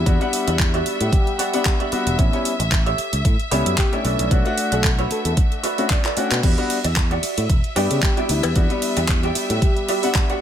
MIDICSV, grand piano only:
0, 0, Header, 1, 2, 480
1, 0, Start_track
1, 0, Tempo, 530973
1, 58, Time_signature, 4, 2, 24, 8
1, 9412, End_track
2, 0, Start_track
2, 0, Title_t, "Grand piano"
2, 0, Program_c, 0, 0
2, 54, Note_on_c, 0, 55, 86
2, 56, Note_on_c, 0, 59, 82
2, 59, Note_on_c, 0, 62, 83
2, 63, Note_on_c, 0, 66, 95
2, 155, Note_off_c, 0, 55, 0
2, 156, Note_off_c, 0, 59, 0
2, 158, Note_off_c, 0, 62, 0
2, 160, Note_off_c, 0, 66, 0
2, 178, Note_on_c, 0, 55, 103
2, 185, Note_on_c, 0, 59, 93
2, 191, Note_on_c, 0, 62, 94
2, 196, Note_on_c, 0, 78, 112
2, 1352, Note_off_c, 0, 55, 0
2, 1356, Note_off_c, 0, 59, 0
2, 1358, Note_off_c, 0, 62, 0
2, 1361, Note_off_c, 0, 78, 0
2, 1386, Note_on_c, 0, 55, 86
2, 1389, Note_on_c, 0, 59, 79
2, 1391, Note_on_c, 0, 62, 77
2, 1394, Note_on_c, 0, 78, 93
2, 1710, Note_off_c, 0, 55, 0
2, 1712, Note_off_c, 0, 59, 0
2, 1713, Note_off_c, 0, 62, 0
2, 1714, Note_off_c, 0, 78, 0
2, 1734, Note_on_c, 0, 55, 84
2, 1738, Note_on_c, 0, 59, 73
2, 1740, Note_on_c, 0, 62, 72
2, 1742, Note_on_c, 0, 66, 91
2, 1949, Note_off_c, 0, 55, 0
2, 1951, Note_off_c, 0, 59, 0
2, 1952, Note_off_c, 0, 62, 0
2, 1954, Note_off_c, 0, 66, 0
2, 1973, Note_on_c, 0, 55, 75
2, 1976, Note_on_c, 0, 59, 73
2, 1978, Note_on_c, 0, 61, 71
2, 1981, Note_on_c, 0, 64, 87
2, 2075, Note_off_c, 0, 55, 0
2, 2076, Note_off_c, 0, 59, 0
2, 2077, Note_off_c, 0, 61, 0
2, 2079, Note_off_c, 0, 64, 0
2, 2105, Note_on_c, 0, 55, 90
2, 2107, Note_on_c, 0, 59, 82
2, 2111, Note_on_c, 0, 61, 86
2, 2113, Note_on_c, 0, 64, 103
2, 2261, Note_off_c, 0, 55, 0
2, 2262, Note_off_c, 0, 59, 0
2, 2264, Note_off_c, 0, 61, 0
2, 2265, Note_off_c, 0, 64, 0
2, 3174, Note_on_c, 0, 55, 89
2, 3178, Note_on_c, 0, 59, 86
2, 3181, Note_on_c, 0, 61, 79
2, 3184, Note_on_c, 0, 64, 96
2, 3516, Note_off_c, 0, 55, 0
2, 3517, Note_off_c, 0, 59, 0
2, 3519, Note_off_c, 0, 61, 0
2, 3520, Note_off_c, 0, 64, 0
2, 3548, Note_on_c, 0, 57, 88
2, 3551, Note_on_c, 0, 61, 83
2, 3553, Note_on_c, 0, 62, 84
2, 3555, Note_on_c, 0, 64, 98
2, 3871, Note_off_c, 0, 57, 0
2, 3872, Note_off_c, 0, 61, 0
2, 3874, Note_off_c, 0, 62, 0
2, 3874, Note_off_c, 0, 64, 0
2, 3896, Note_on_c, 0, 57, 84
2, 3898, Note_on_c, 0, 61, 77
2, 3901, Note_on_c, 0, 62, 79
2, 3905, Note_on_c, 0, 66, 98
2, 3996, Note_off_c, 0, 57, 0
2, 3998, Note_off_c, 0, 61, 0
2, 3999, Note_off_c, 0, 62, 0
2, 4001, Note_off_c, 0, 66, 0
2, 4021, Note_on_c, 0, 57, 100
2, 4033, Note_on_c, 0, 62, 90
2, 4039, Note_on_c, 0, 66, 113
2, 5193, Note_off_c, 0, 57, 0
2, 5199, Note_off_c, 0, 62, 0
2, 5202, Note_off_c, 0, 66, 0
2, 5224, Note_on_c, 0, 57, 80
2, 5226, Note_on_c, 0, 61, 76
2, 5229, Note_on_c, 0, 62, 75
2, 5234, Note_on_c, 0, 66, 87
2, 5381, Note_off_c, 0, 57, 0
2, 5382, Note_off_c, 0, 61, 0
2, 5383, Note_off_c, 0, 62, 0
2, 5385, Note_off_c, 0, 66, 0
2, 5571, Note_on_c, 0, 57, 84
2, 5575, Note_on_c, 0, 61, 78
2, 5578, Note_on_c, 0, 62, 79
2, 5582, Note_on_c, 0, 66, 96
2, 5743, Note_off_c, 0, 57, 0
2, 5745, Note_off_c, 0, 61, 0
2, 5747, Note_off_c, 0, 62, 0
2, 5748, Note_off_c, 0, 66, 0
2, 5814, Note_on_c, 0, 55, 79
2, 5819, Note_on_c, 0, 59, 72
2, 5821, Note_on_c, 0, 62, 74
2, 5825, Note_on_c, 0, 66, 85
2, 5915, Note_off_c, 0, 55, 0
2, 5918, Note_off_c, 0, 59, 0
2, 5919, Note_off_c, 0, 62, 0
2, 5921, Note_off_c, 0, 66, 0
2, 5945, Note_on_c, 0, 55, 91
2, 5947, Note_on_c, 0, 59, 84
2, 5951, Note_on_c, 0, 62, 81
2, 5953, Note_on_c, 0, 66, 102
2, 6101, Note_off_c, 0, 55, 0
2, 6102, Note_off_c, 0, 59, 0
2, 6104, Note_off_c, 0, 62, 0
2, 6105, Note_off_c, 0, 66, 0
2, 7012, Note_on_c, 0, 55, 90
2, 7015, Note_on_c, 0, 59, 80
2, 7018, Note_on_c, 0, 62, 81
2, 7354, Note_off_c, 0, 55, 0
2, 7356, Note_off_c, 0, 59, 0
2, 7357, Note_off_c, 0, 62, 0
2, 7384, Note_on_c, 0, 55, 90
2, 7387, Note_on_c, 0, 59, 83
2, 7390, Note_on_c, 0, 62, 82
2, 7393, Note_on_c, 0, 64, 98
2, 7709, Note_off_c, 0, 55, 0
2, 7711, Note_off_c, 0, 59, 0
2, 7712, Note_off_c, 0, 62, 0
2, 7714, Note_off_c, 0, 64, 0
2, 7734, Note_on_c, 0, 55, 89
2, 7738, Note_on_c, 0, 59, 81
2, 7740, Note_on_c, 0, 62, 84
2, 7742, Note_on_c, 0, 66, 96
2, 7836, Note_off_c, 0, 55, 0
2, 7837, Note_off_c, 0, 59, 0
2, 7838, Note_off_c, 0, 62, 0
2, 7839, Note_off_c, 0, 66, 0
2, 7860, Note_on_c, 0, 55, 100
2, 7865, Note_on_c, 0, 59, 94
2, 7871, Note_on_c, 0, 62, 87
2, 9033, Note_off_c, 0, 55, 0
2, 9036, Note_off_c, 0, 59, 0
2, 9038, Note_off_c, 0, 62, 0
2, 9066, Note_on_c, 0, 55, 84
2, 9069, Note_on_c, 0, 59, 76
2, 9071, Note_on_c, 0, 62, 81
2, 9074, Note_on_c, 0, 78, 92
2, 9390, Note_off_c, 0, 55, 0
2, 9392, Note_off_c, 0, 59, 0
2, 9393, Note_off_c, 0, 62, 0
2, 9394, Note_off_c, 0, 78, 0
2, 9412, End_track
0, 0, End_of_file